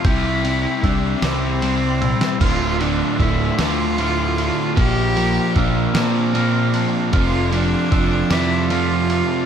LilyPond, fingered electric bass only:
\new Staff \with { instrumentName = "Fingered electric bass" } { \clef bass \time 6/8 \key d \minor \tempo 4. = 51 c,4 c,8 c,4. | d,,4 d,,8 d,4. | bes,,4 bes,,8 bes,4. | f,,4 f,,8 f,4. | }